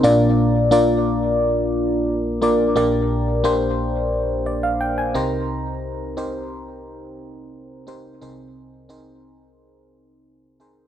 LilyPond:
<<
  \new Staff \with { instrumentName = "FM electric piano" } { \time 4/4 \key bes \mixolydian \tempo 4 = 88 << { r1 | r2 r8 d''16 f''16 g''16 aes''16 bes''8 | r1 | r1 | } \\ { <bes d' f' bes' d''>8 r8 <bes d' f' bes' d''>4~ <bes d' f' bes' d''>16 r4 r16 <bes d' f' bes' d''>8 | <bes d' g' bes' d''>8 r8 <bes d' g' bes' c''>4~ <bes d' g' bes' c''>16 r4 r16 <c' ees' g' bes' c''>8~ | <c' ees' g' bes' c''>8 r8 <c' ees' g' bes' c''>4~ <c' ees' g' bes' c''>16 r4 r16 <c' ees' g' bes' c''>8 | <c' ees' aes' bes' c''>8 r8 <c' ees' aes' bes' c''>4~ <c' ees' aes' bes' c''>16 r4 r16 <c' ees' aes' bes' c''>8 | } >> }
  \new Staff \with { instrumentName = "FM electric piano" } { \clef bass \time 4/4 \key bes \mixolydian <bes,, bes,>1 | <bes,, bes,>2.~ <bes,, bes,>8 <c, c>8~ | <c, c>2.~ <c, c>8 r8 | <c, c>1 | }
>>